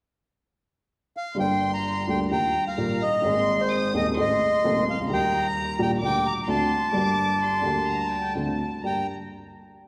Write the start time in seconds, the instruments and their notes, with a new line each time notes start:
1.17 bandoneon F5
1.35 upright piano G1 G2 D3 G3 A#3, violin section C6
1.39 upright piano G4, bandoneon G5
1.73 bandoneon A#5
2.08 upright piano D2 D3 G3 A#3 G4, bandoneon G5
2.31 upright piano D#2 D#3 G3 A#3 F4, bandoneon G5, violin section A#5
2.67 bandoneon F5
2.78 upright piano A#1 A#2 D#3 G3 A#3 F4
3.02 bandoneon D#5
3.22 upright piano G#1 G#2 D#3 A#3 C4
3.26 upright piano G#4, violin section C6
3.61 bandoneon C5
3.72 violin section D#6
3.94 upright piano D#1 D#2 D#3 A#3 C4 G#4, bandoneon D#5
4.17 upright piano A1 A2 D#3 A3 C4 A4, bandoneon D#5, violin section C6
4.64 upright piano D#1 D#2 D#3 A3 C4 A4
4.90 upright piano C2, bandoneon F5
5.00 upright piano C#2
5.05 upright piano D2
5.09 upright piano D#2 D#3 G3 A#3 G4, bandoneon G5, violin section A#5
5.46 bandoneon A#5
5.79 upright piano A#1 A#2 D#3 G3 A#3 G4, bandoneon G5
6.00 upright piano D2 D3 G3 A#3 G4, violin section D6
6.05 bandoneon G5
6.26 bandoneon A#5
6.42 bandoneon A#5
6.47 upright piano D2 D3 A3 C4 F#4, bandoneon A5, violin section C6
6.92 upright piano G1 G2 D3 G3 A#3, violin section D6
6.96 upright piano G4
7.41 violin section C6
7.62 upright piano D2 D3 G3 A#3 G4
7.88 violin section A#5
8.11 violin section G5
8.35 upright piano D2 D3 A3 C4 F#4, violin section A5
8.83 upright piano G2 A#3 D4 G4, bandoneon G5, violin section A#5